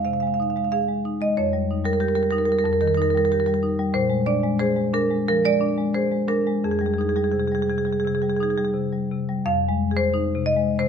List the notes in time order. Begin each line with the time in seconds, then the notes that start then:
Already playing: G#3
0.05 C3 F5
0.13 F5
0.20 G#3 F5
0.27 F5
0.34 F5
0.40 D#4 F5
0.50 F5
0.56 G#3 F5
0.65 F5
0.72 G#4 F5
0.88 G#3
1.05 D#4
1.20 G#3 D#5
1.37 F2 C#5
1.53 G3
1.71 D#4
1.85 G3 A#4
1.93 A#4
2.00 G4 A#4
2.08 A#4
2.15 G3 A#4
2.23 A#4
2.31 D#4 A#4
2.38 A#4
2.45 G3 A#4
2.52 A#4
2.59 A#4
2.64 F2 A#4
2.73 A#4
2.81 D#3 A#4
2.88 A#4
2.95 D#4 A#4
3.02 A#4
3.10 A#4
3.14 G3 A#4
3.25 A#4
3.32 G4 A#4
3.40 A#4
3.46 G3 A#4
3.54 A#4
3.63 D#4
3.79 G3
3.94 A#2 C5
4.10 G#3
4.26 D4 D5
4.43 G#3
4.59 G#4 C5
4.76 G#3
4.93 D4 A#4
5.11 G#3
5.28 F3 A#4
5.45 G#3 D5
5.61 D4
5.78 G#3
5.94 G#4 C5
6.11 G#3
6.28 D4 A#4
6.47 G#3
6.64 F2 G#4
6.72 G#4
6.79 G3 G#4
6.86 G#4
6.94 G#4
6.98 D#4 G#4
7.09 G#4
7.16 G3 G#4
7.24 G#4
7.32 C3 G#4
7.40 G#4
7.48 G#4
7.52 G3 G#4
7.62 G#4
7.70 C3 G#4
7.78 G#4
7.85 G3 G#4
7.93 G#4
8.00 G#4
8.05 C3 G#4
8.15 G#4
8.22 G3 G#4
8.30 G#4
8.36 D#4 G#4
8.43 G#4
8.50 G#4
8.58 G3 G#4
8.65 G#4
8.74 C3
8.93 G3
9.12 C3
9.29 G3
9.46 F2 F5
9.69 G#3
9.91 G#4
9.97 C5
10.14 D#4
10.35 C3
10.46 D#5
10.57 G#3
10.79 C3 C5